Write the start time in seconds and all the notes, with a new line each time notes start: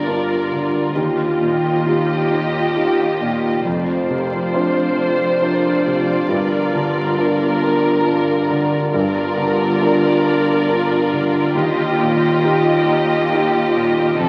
Already playing: G1 G2 D3 D4 F4 A#4 D5
0.07 D4 F4 A#4 A5
0.30 A#4
0.52 D3 D4
0.74 A#4
0.95 D#2 D#3 G4 D#5
1.18 G4
1.41 A#2 F4
1.63 G4
1.86 D#4 F4 G4
2.08 G4
2.30 D#4
2.53 G4
2.75 D#4 F4 G4
2.98 G4
3.20 A#2 D#4
3.43 G4
3.64 F1 F2 F4 C5 D5
3.88 C5
4.09 C3 A#4
4.32 C5
4.54 D4 F4 C5
4.77 C5
4.98 D4
5.21 C5
5.42 D4 F4 A#4 C5
5.65 C5
5.86 C3 D4
6.09 C5
6.29 G1 G2 A#4
6.52 A#4
6.74 D3 A5
6.97 A#4
7.19 D4 F4 A#4
7.40 A#4
7.62 D4
7.84 A#4
8.06 D4 F4 A#4 A5
8.29 A#4
8.49 D3 D4
8.73 A#4
8.94 G1 G2 F4 A#4 D5
9.17 A#4
9.37 D3 A5
9.60 A#4
9.81 D4 F4 A#4
10.04 A#4
10.25 D4
10.48 A#4
10.69 D4 F4 A#4 A5
10.91 A#4
11.13 D3 D4
11.35 A#4
11.55 D#2 D#3 G4 D#5
11.78 G4
12.00 A#2 F4
12.21 G4
12.43 D#4 F4 G4
12.65 G4
12.87 D#4
13.09 G4
13.31 D#4 F4 G4
13.54 G4
13.75 A#2 D#4
13.98 G4
14.19 F1 F2 F3 C4 A4 D5